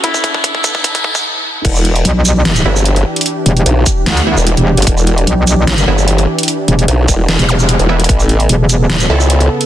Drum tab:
CC |--------------------------------|x-------------------------------|--------------------------------|--------------------------------|
HH |x---x---x---x---x-x-------------|x---x-x-x---x---x-x-----x-x---xx|x---x-x-x---x---x-x-----x-x---xx|x---x-x-x---x---x-x-----x-x---xx|
SH |--x---------x---------x---------|--x---------x-----x---x---------|------------x---------x---------|--x---------x-----x---x---------|
SD |--------------------------------|----------------o---------------|----------------o---------------|----------------o---------------|
BD |o-o-o-o-o-o-o-o-o-o-o-o---------|o-------------------------------|------------o-------------------|o-------------------------------|

CC |--------------------------------|--------------------------------|
HH |x---x-x-x---x---x-x-----x-x---xx|x---x-x-x---x---x-x-----x-x---x-|
SH |------------x---------x---------|--x---------x-----x---x---------|
SD |----------------o---------------|----------------o---------------|
BD |------------o-------------------|o-------------------------------|